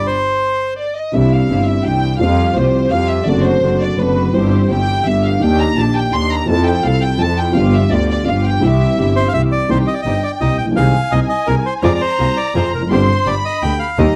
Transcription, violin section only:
0, 0, Header, 1, 2, 480
1, 0, Start_track
1, 0, Key_signature, 0, "major"
1, 0, Tempo, 356930
1, 74, Time_signature, 3, 2, 24, 8
1, 13034, Key_signature, -3, "minor"
1, 19038, End_track
2, 0, Start_track
2, 0, Title_t, "Violin section"
2, 0, Program_c, 0, 48
2, 1041, Note_on_c, 0, 74, 81
2, 1264, Note_off_c, 0, 74, 0
2, 1281, Note_on_c, 0, 75, 70
2, 1521, Note_off_c, 0, 75, 0
2, 1526, Note_on_c, 0, 76, 76
2, 1763, Note_on_c, 0, 77, 82
2, 1764, Note_off_c, 0, 76, 0
2, 2234, Note_on_c, 0, 76, 81
2, 2243, Note_off_c, 0, 77, 0
2, 2471, Note_on_c, 0, 79, 93
2, 2478, Note_off_c, 0, 76, 0
2, 2948, Note_on_c, 0, 77, 97
2, 2956, Note_off_c, 0, 79, 0
2, 3400, Note_off_c, 0, 77, 0
2, 3441, Note_on_c, 0, 72, 88
2, 3919, Note_off_c, 0, 72, 0
2, 3920, Note_on_c, 0, 77, 103
2, 4158, Note_on_c, 0, 76, 89
2, 4159, Note_off_c, 0, 77, 0
2, 4396, Note_on_c, 0, 74, 90
2, 4398, Note_off_c, 0, 76, 0
2, 4636, Note_off_c, 0, 74, 0
2, 4638, Note_on_c, 0, 72, 101
2, 5117, Note_off_c, 0, 72, 0
2, 5118, Note_on_c, 0, 74, 88
2, 5358, Note_off_c, 0, 74, 0
2, 5358, Note_on_c, 0, 71, 93
2, 5838, Note_off_c, 0, 71, 0
2, 5850, Note_on_c, 0, 72, 89
2, 6323, Note_off_c, 0, 72, 0
2, 6324, Note_on_c, 0, 79, 105
2, 6801, Note_on_c, 0, 76, 96
2, 6802, Note_off_c, 0, 79, 0
2, 7040, Note_off_c, 0, 76, 0
2, 7057, Note_on_c, 0, 77, 86
2, 7289, Note_off_c, 0, 77, 0
2, 7296, Note_on_c, 0, 79, 103
2, 7528, Note_off_c, 0, 79, 0
2, 7535, Note_on_c, 0, 82, 101
2, 7768, Note_off_c, 0, 82, 0
2, 7774, Note_on_c, 0, 81, 98
2, 8007, Note_off_c, 0, 81, 0
2, 8024, Note_on_c, 0, 79, 97
2, 8252, Note_off_c, 0, 79, 0
2, 8256, Note_on_c, 0, 84, 105
2, 8488, Note_off_c, 0, 84, 0
2, 8492, Note_on_c, 0, 82, 95
2, 8725, Note_off_c, 0, 82, 0
2, 8733, Note_on_c, 0, 81, 100
2, 8948, Note_off_c, 0, 81, 0
2, 8960, Note_on_c, 0, 79, 94
2, 9198, Note_off_c, 0, 79, 0
2, 9205, Note_on_c, 0, 77, 102
2, 9440, Note_off_c, 0, 77, 0
2, 9445, Note_on_c, 0, 79, 102
2, 9680, Note_off_c, 0, 79, 0
2, 9688, Note_on_c, 0, 81, 103
2, 9920, Note_off_c, 0, 81, 0
2, 9936, Note_on_c, 0, 79, 92
2, 10164, Note_off_c, 0, 79, 0
2, 10175, Note_on_c, 0, 77, 92
2, 10404, Note_off_c, 0, 77, 0
2, 10413, Note_on_c, 0, 76, 97
2, 10642, Note_off_c, 0, 76, 0
2, 10645, Note_on_c, 0, 74, 105
2, 10878, Note_off_c, 0, 74, 0
2, 10894, Note_on_c, 0, 74, 92
2, 11106, Note_off_c, 0, 74, 0
2, 11130, Note_on_c, 0, 77, 91
2, 11360, Note_off_c, 0, 77, 0
2, 11369, Note_on_c, 0, 79, 88
2, 11599, Note_off_c, 0, 79, 0
2, 11619, Note_on_c, 0, 76, 91
2, 12567, Note_off_c, 0, 76, 0
2, 13040, Note_on_c, 0, 79, 75
2, 14426, Note_off_c, 0, 79, 0
2, 14478, Note_on_c, 0, 80, 81
2, 15862, Note_off_c, 0, 80, 0
2, 15911, Note_on_c, 0, 82, 93
2, 17353, Note_off_c, 0, 82, 0
2, 17362, Note_on_c, 0, 84, 87
2, 17805, Note_off_c, 0, 84, 0
2, 17841, Note_on_c, 0, 83, 91
2, 18560, Note_off_c, 0, 83, 0
2, 18804, Note_on_c, 0, 82, 87
2, 19038, Note_off_c, 0, 82, 0
2, 19038, End_track
0, 0, End_of_file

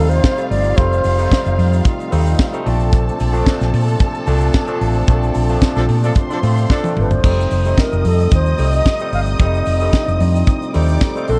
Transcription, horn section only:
0, 0, Header, 1, 2, 480
1, 0, Start_track
1, 0, Tempo, 538600
1, 691, Time_signature, 4, 2, 24, 8
1, 10154, End_track
2, 0, Start_track
2, 0, Title_t, "Horn section"
2, 0, Program_c, 0, 61
2, 5138, Note_on_c, 0, 62, 84
2, 5138, Note_on_c, 0, 69, 103
2, 5140, Note_on_c, 0, 53, 84
2, 5209, Note_off_c, 0, 62, 0
2, 5209, Note_off_c, 0, 69, 0
2, 5210, Note_off_c, 0, 53, 0
2, 5379, Note_on_c, 0, 69, 94
2, 5380, Note_on_c, 0, 53, 81
2, 5380, Note_on_c, 0, 62, 84
2, 5450, Note_off_c, 0, 53, 0
2, 5450, Note_off_c, 0, 62, 0
2, 5450, Note_off_c, 0, 69, 0
2, 5619, Note_on_c, 0, 53, 83
2, 5619, Note_on_c, 0, 62, 82
2, 5620, Note_on_c, 0, 69, 90
2, 5690, Note_off_c, 0, 53, 0
2, 5690, Note_off_c, 0, 62, 0
2, 5690, Note_off_c, 0, 69, 0
2, 5971, Note_on_c, 0, 53, 100
2, 5971, Note_on_c, 0, 62, 101
2, 5971, Note_on_c, 0, 69, 107
2, 6319, Note_off_c, 0, 53, 0
2, 6319, Note_off_c, 0, 62, 0
2, 6319, Note_off_c, 0, 69, 0
2, 10154, End_track
0, 0, End_of_file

